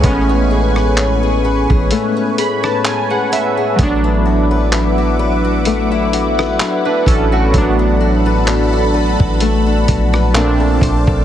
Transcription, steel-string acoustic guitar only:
X:1
M:4/4
L:1/16
Q:"Swing 16ths" 1/4=64
K:A
V:1 name="Steel-string acoustic guitar"
[A,CGB] C G B C G B G A, C G B C G B G | A, E F B E F B F A, E F B E F B F | A, D F B D F B F A, D F B _B, A =c A |]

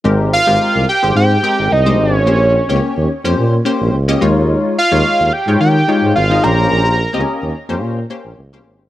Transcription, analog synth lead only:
X:1
M:4/4
L:1/8
Q:1/4=108
K:Bbdor
V:1 name="Analog synth lead"
z f2 g g2 e d- | d3 z4 z | z f2 g g2 f b- | b3 z4 z |]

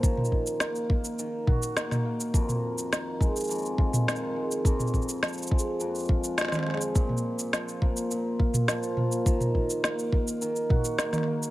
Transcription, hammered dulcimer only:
X:1
M:4/4
L:1/8
Q:1/4=104
K:Fphr
V:1 name="Hammered dulcimer" clef=bass
E,2 B, B, E, G B, B, | F,,2 E, A, F,, F E, A, | F,,2 F, A, F,, F F, A, | B,,2 F, B, B,, F F, B, |
E,2 B, B, E, G B, B, |]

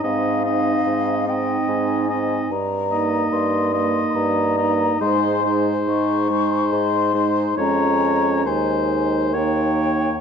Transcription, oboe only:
X:1
M:3/4
L:1/8
Q:1/4=71
K:Ab
V:1 name="Oboe"
e e2 e2 e | z e2 e2 e | c c2 c2 c | d2 c2 d2 |]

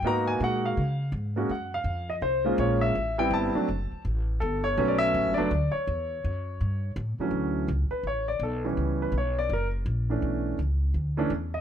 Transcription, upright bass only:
X:1
M:4/4
L:1/8
Q:"Swing" 1/4=165
K:D
V:1 name="Upright bass" clef=bass
^G,,2 ^A,,2 C,2 G,,2 | F,,2 ^E,,2 =C,,2 ^A,,,2 | A,,,2 G,,, z F,,, z A,,,2 | G,,,2 B,,,2 (3A,,, G,,, F,,, D,, z |
E,,2 F,,2 G,,2 A,, z | D,,2 C,, z A,,,2 B,,,2 | C,,2 B,,,2 F,,,2 ^A,,,2 | B,,,2 C,,2 D,,2 E,,2 |]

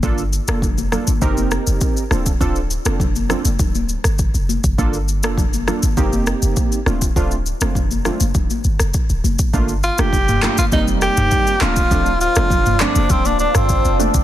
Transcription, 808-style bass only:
X:1
M:4/4
L:1/16
Q:1/4=101
K:Dphr
V:1 name="808-style bass" clef=bass
G,,,3 F,,,4 G,,, F,,,3 F,,, z2 D,,,2 | D,,,3 F,,,4 F,,, D,,,3 G,,,2 F,,,2 F,,, | G,,,3 F,,,4 G,,, F,,,3 F,,, z2 D,,,2 | D,,,3 F,,,4 F,,, D,,, z G,,, F,,, z D,,, F,,, z |
G,,,3 F,,,4 G,,, F,,,3 F,,, z2 D,,,2 | D,,,3 F,,,4 F,,, D,,,3 G,,,2 F,,,2 F,,, |]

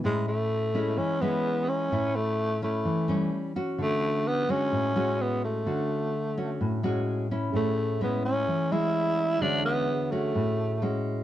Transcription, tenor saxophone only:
X:1
M:4/4
L:1/8
Q:1/4=128
K:A
V:1 name="Tenor saxophone"
G, A,3 C B,2 C- | C A,2 A,4 z | A,2 B, C3 B, A,- | A,6 z2 |
A,2 B, C2 E3 | D B,2 A,4 z |]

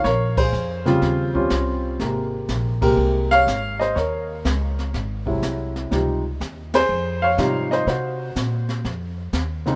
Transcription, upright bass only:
X:1
M:4/4
L:1/8
Q:"Swing" 1/4=123
K:Ab
V:1 name="Upright bass" clef=bass
B,,,2 F,,2 E,,2 C,,2 | A,,,2 B,,,2 C,,2 A,,,2 | E,,2 D,,2 A,,,2 C,,2 | D,,2 E,,2 F,,2 A,,2 |
C,2 B,,2 F,,2 E,,2 |]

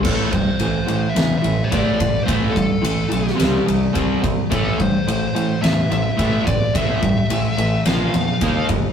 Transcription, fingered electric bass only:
X:1
M:4/4
L:1/8
Q:1/4=108
K:Aphr
V:1 name="Fingered electric bass" clef=bass
A,,, G,, A,,, A,, E,, A,,, A,,, A,,, | A,,, G,, A,,, =B,,, C,, C,, C,, C,, | A,,, G,, A,,, A,, E,, A,,, A,,, A,,, | A,,, G,, A,,, A,,, B,,, E,, ^D,, G,,, |]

